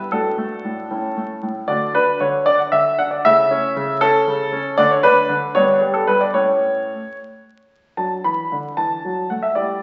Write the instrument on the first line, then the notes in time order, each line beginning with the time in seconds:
grand piano
Already playing: G2
0.12 A2 D4 F#4 A4
0.38 A3
0.65 A2
0.91 A2 C#4 E4
1.17 A3
1.43 A2
1.68 D3 D4 F#4 D5
1.95 D4 B4
2.20 D3 C#5
2.46 D4 D5
2.58 F#5
2.72 D3 E5
2.99 D4 F#5
3.11 D5
3.25 C#3 A3 E4 E5
3.51 C#4
3.76 C#3
4.01 C#4 A4
4.27 C#3
4.52 C#4
4.78 D3 A3 D4 D5
4.91 C#5
5.03 D4 B4
5.29 D3
5.55 G2 B3 D4 C#5
5.81 G3
5.94 A4
6.07 G2 B4
6.21 D5
6.34 A2 A3 C#4 C#5
7.97 F#3 D4 A5
8.24 E3 B5
8.52 D3
8.77 E3 A5
9.05 F#3
9.30 A3 F#5
9.42 E5
9.55 G3 E4 D5